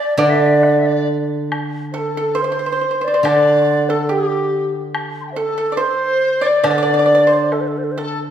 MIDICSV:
0, 0, Header, 1, 6, 480
1, 0, Start_track
1, 0, Tempo, 882353
1, 819, Time_signature, 2, 2, 24, 8
1, 1296, Tempo, 853485
1, 3696, Tempo, 881057
1, 4598, End_track
2, 0, Start_track
2, 0, Title_t, "Dizi"
2, 0, Program_c, 0, 73
2, 0, Note_on_c, 0, 74, 94
2, 82, Note_off_c, 0, 74, 0
2, 123, Note_on_c, 0, 74, 75
2, 159, Note_on_c, 0, 76, 69
2, 167, Note_off_c, 0, 74, 0
2, 221, Note_on_c, 0, 74, 69
2, 230, Note_off_c, 0, 76, 0
2, 245, Note_on_c, 0, 76, 66
2, 253, Note_off_c, 0, 74, 0
2, 300, Note_on_c, 0, 74, 61
2, 309, Note_off_c, 0, 76, 0
2, 342, Note_on_c, 0, 76, 64
2, 350, Note_off_c, 0, 74, 0
2, 381, Note_on_c, 0, 74, 67
2, 389, Note_off_c, 0, 76, 0
2, 428, Note_on_c, 0, 76, 68
2, 436, Note_off_c, 0, 74, 0
2, 468, Note_on_c, 0, 74, 84
2, 476, Note_off_c, 0, 76, 0
2, 588, Note_off_c, 0, 74, 0
2, 1042, Note_on_c, 0, 72, 44
2, 1079, Note_on_c, 0, 69, 68
2, 1087, Note_off_c, 0, 72, 0
2, 1318, Note_on_c, 0, 72, 75
2, 1327, Note_off_c, 0, 69, 0
2, 1678, Note_on_c, 0, 74, 73
2, 1686, Note_off_c, 0, 72, 0
2, 1790, Note_off_c, 0, 74, 0
2, 1797, Note_on_c, 0, 74, 79
2, 2157, Note_on_c, 0, 69, 62
2, 2166, Note_off_c, 0, 74, 0
2, 2269, Note_off_c, 0, 69, 0
2, 2288, Note_on_c, 0, 67, 58
2, 2608, Note_off_c, 0, 67, 0
2, 2883, Note_on_c, 0, 84, 26
2, 2900, Note_off_c, 0, 84, 0
2, 2904, Note_on_c, 0, 81, 29
2, 2917, Note_off_c, 0, 81, 0
2, 2920, Note_on_c, 0, 79, 30
2, 2939, Note_off_c, 0, 79, 0
2, 2943, Note_on_c, 0, 76, 36
2, 2954, Note_off_c, 0, 76, 0
2, 2958, Note_on_c, 0, 74, 37
2, 2970, Note_off_c, 0, 74, 0
2, 2974, Note_on_c, 0, 72, 40
2, 2985, Note_off_c, 0, 72, 0
2, 2986, Note_on_c, 0, 69, 66
2, 3204, Note_off_c, 0, 69, 0
2, 3237, Note_on_c, 0, 72, 68
2, 3594, Note_on_c, 0, 74, 72
2, 3602, Note_off_c, 0, 72, 0
2, 3705, Note_off_c, 0, 74, 0
2, 3716, Note_on_c, 0, 74, 81
2, 4065, Note_on_c, 0, 72, 54
2, 4074, Note_off_c, 0, 74, 0
2, 4095, Note_on_c, 0, 74, 45
2, 4103, Note_off_c, 0, 72, 0
2, 4123, Note_on_c, 0, 72, 52
2, 4132, Note_off_c, 0, 74, 0
2, 4178, Note_off_c, 0, 72, 0
2, 4444, Note_on_c, 0, 69, 70
2, 4532, Note_off_c, 0, 69, 0
2, 4598, End_track
3, 0, Start_track
3, 0, Title_t, "Pipa"
3, 0, Program_c, 1, 105
3, 0, Note_on_c, 1, 74, 92
3, 72, Note_off_c, 1, 74, 0
3, 100, Note_on_c, 1, 74, 80
3, 559, Note_off_c, 1, 74, 0
3, 1054, Note_on_c, 1, 69, 62
3, 1167, Note_off_c, 1, 69, 0
3, 1182, Note_on_c, 1, 69, 62
3, 1275, Note_off_c, 1, 69, 0
3, 1277, Note_on_c, 1, 72, 66
3, 1322, Note_off_c, 1, 72, 0
3, 1329, Note_on_c, 1, 72, 46
3, 1366, Note_off_c, 1, 72, 0
3, 1372, Note_on_c, 1, 72, 51
3, 1407, Note_off_c, 1, 72, 0
3, 1413, Note_on_c, 1, 72, 43
3, 1446, Note_off_c, 1, 72, 0
3, 1453, Note_on_c, 1, 72, 46
3, 1481, Note_off_c, 1, 72, 0
3, 1488, Note_on_c, 1, 72, 41
3, 1531, Note_off_c, 1, 72, 0
3, 1538, Note_on_c, 1, 72, 44
3, 1580, Note_off_c, 1, 72, 0
3, 1592, Note_on_c, 1, 72, 39
3, 1627, Note_off_c, 1, 72, 0
3, 1650, Note_on_c, 1, 72, 45
3, 1678, Note_off_c, 1, 72, 0
3, 1686, Note_on_c, 1, 72, 42
3, 1716, Note_off_c, 1, 72, 0
3, 1722, Note_on_c, 1, 72, 54
3, 1754, Note_off_c, 1, 72, 0
3, 1781, Note_on_c, 1, 74, 78
3, 2001, Note_off_c, 1, 74, 0
3, 2001, Note_on_c, 1, 72, 78
3, 2119, Note_off_c, 1, 72, 0
3, 2148, Note_on_c, 1, 69, 67
3, 2256, Note_off_c, 1, 69, 0
3, 2256, Note_on_c, 1, 67, 57
3, 2593, Note_off_c, 1, 67, 0
3, 2973, Note_on_c, 1, 69, 66
3, 3084, Note_off_c, 1, 69, 0
3, 3092, Note_on_c, 1, 69, 57
3, 3169, Note_off_c, 1, 69, 0
3, 3173, Note_on_c, 1, 74, 52
3, 3202, Note_on_c, 1, 72, 71
3, 3213, Note_off_c, 1, 74, 0
3, 3548, Note_off_c, 1, 72, 0
3, 3563, Note_on_c, 1, 74, 75
3, 3681, Note_off_c, 1, 74, 0
3, 3688, Note_on_c, 1, 74, 77
3, 3719, Note_off_c, 1, 74, 0
3, 3726, Note_on_c, 1, 74, 56
3, 3759, Note_off_c, 1, 74, 0
3, 3766, Note_on_c, 1, 74, 67
3, 3785, Note_off_c, 1, 74, 0
3, 3792, Note_on_c, 1, 74, 56
3, 3840, Note_off_c, 1, 74, 0
3, 3853, Note_on_c, 1, 74, 61
3, 3875, Note_off_c, 1, 74, 0
3, 3882, Note_on_c, 1, 74, 54
3, 3911, Note_off_c, 1, 74, 0
3, 3918, Note_on_c, 1, 74, 63
3, 3960, Note_off_c, 1, 74, 0
3, 3967, Note_on_c, 1, 74, 57
3, 4010, Note_off_c, 1, 74, 0
3, 4034, Note_on_c, 1, 72, 57
3, 4154, Note_off_c, 1, 72, 0
3, 4418, Note_on_c, 1, 69, 63
3, 4518, Note_off_c, 1, 69, 0
3, 4598, End_track
4, 0, Start_track
4, 0, Title_t, "Xiao"
4, 0, Program_c, 2, 77
4, 0, Note_on_c, 2, 74, 102
4, 95, Note_off_c, 2, 74, 0
4, 98, Note_on_c, 2, 74, 99
4, 558, Note_off_c, 2, 74, 0
4, 1078, Note_on_c, 2, 69, 71
4, 1180, Note_off_c, 2, 69, 0
4, 1190, Note_on_c, 2, 69, 72
4, 1315, Note_on_c, 2, 72, 86
4, 1324, Note_off_c, 2, 69, 0
4, 1666, Note_on_c, 2, 74, 83
4, 1675, Note_off_c, 2, 72, 0
4, 1784, Note_off_c, 2, 74, 0
4, 1799, Note_on_c, 2, 74, 93
4, 2146, Note_on_c, 2, 69, 76
4, 2154, Note_off_c, 2, 74, 0
4, 2273, Note_on_c, 2, 67, 69
4, 2281, Note_off_c, 2, 69, 0
4, 2623, Note_off_c, 2, 67, 0
4, 2951, Note_on_c, 2, 72, 50
4, 2979, Note_on_c, 2, 69, 68
4, 2988, Note_off_c, 2, 72, 0
4, 3093, Note_off_c, 2, 69, 0
4, 3097, Note_on_c, 2, 69, 77
4, 3202, Note_off_c, 2, 69, 0
4, 3205, Note_on_c, 2, 72, 90
4, 3575, Note_on_c, 2, 74, 85
4, 3583, Note_off_c, 2, 72, 0
4, 3689, Note_off_c, 2, 74, 0
4, 3693, Note_on_c, 2, 74, 94
4, 4172, Note_on_c, 2, 69, 55
4, 4181, Note_off_c, 2, 74, 0
4, 4218, Note_on_c, 2, 72, 57
4, 4226, Note_off_c, 2, 69, 0
4, 4255, Note_on_c, 2, 69, 55
4, 4263, Note_off_c, 2, 72, 0
4, 4311, Note_on_c, 2, 72, 56
4, 4319, Note_off_c, 2, 69, 0
4, 4345, Note_on_c, 2, 69, 55
4, 4353, Note_off_c, 2, 72, 0
4, 4386, Note_on_c, 2, 72, 55
4, 4394, Note_off_c, 2, 69, 0
4, 4426, Note_on_c, 2, 69, 57
4, 4434, Note_off_c, 2, 72, 0
4, 4530, Note_off_c, 2, 69, 0
4, 4598, End_track
5, 0, Start_track
5, 0, Title_t, "Guzheng"
5, 0, Program_c, 3, 107
5, 95, Note_on_c, 3, 50, 70
5, 1540, Note_off_c, 3, 50, 0
5, 1773, Note_on_c, 3, 50, 55
5, 3209, Note_off_c, 3, 50, 0
5, 3689, Note_on_c, 3, 50, 55
5, 4598, Note_off_c, 3, 50, 0
5, 4598, End_track
6, 0, Start_track
6, 0, Title_t, "Drums"
6, 343, Note_on_c, 9, 77, 45
6, 397, Note_off_c, 9, 77, 0
6, 826, Note_on_c, 9, 76, 61
6, 880, Note_off_c, 9, 76, 0
6, 1785, Note_on_c, 9, 76, 56
6, 1842, Note_off_c, 9, 76, 0
6, 2737, Note_on_c, 9, 76, 59
6, 2794, Note_off_c, 9, 76, 0
6, 3691, Note_on_c, 9, 76, 56
6, 3746, Note_off_c, 9, 76, 0
6, 4170, Note_on_c, 9, 76, 37
6, 4170, Note_on_c, 9, 77, 37
6, 4224, Note_off_c, 9, 76, 0
6, 4224, Note_off_c, 9, 77, 0
6, 4598, End_track
0, 0, End_of_file